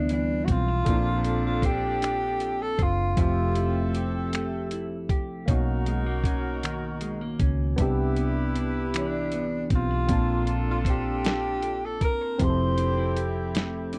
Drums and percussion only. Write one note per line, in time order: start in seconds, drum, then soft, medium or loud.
0.09 closed hi-hat medium
0.48 kick medium
0.48 closed hi-hat soft
0.86 kick loud
0.86 closed hi-hat medium
1.24 closed hi-hat medium
1.62 kick medium
1.62 closed hi-hat soft
2.02 finger snap medium
2.02 closed hi-hat medium
2.40 closed hi-hat soft
2.79 kick medium
2.79 closed hi-hat soft
3.17 kick loud
3.17 closed hi-hat medium
3.55 closed hi-hat medium
3.95 closed hi-hat medium
4.33 finger snap medium
4.33 closed hi-hat medium
4.71 closed hi-hat medium
5.09 kick medium
5.09 closed hi-hat soft
5.48 kick loud
5.48 closed hi-hat medium
5.86 closed hi-hat medium
6.24 kick medium
6.24 closed hi-hat medium
6.63 finger snap medium
6.63 closed hi-hat medium
7.01 closed hi-hat medium
7.40 kick medium
7.40 closed hi-hat soft
7.78 kick loud
7.78 closed hi-hat medium
8.17 closed hi-hat medium
8.56 closed hi-hat soft
8.94 finger snap medium
8.94 closed hi-hat medium
9.32 closed hi-hat medium
9.70 kick medium
9.70 closed hi-hat soft
10.09 kick loud
10.09 closed hi-hat medium
10.47 closed hi-hat medium
10.85 kick medium
10.85 closed hi-hat soft
11.25 snare medium
11.25 closed hi-hat medium
11.63 closed hi-hat medium
12.01 kick medium
12.01 closed hi-hat soft
12.39 kick loud
12.39 closed hi-hat medium
12.78 closed hi-hat medium
13.17 closed hi-hat medium
13.55 snare medium
13.55 closed hi-hat medium
13.93 closed hi-hat medium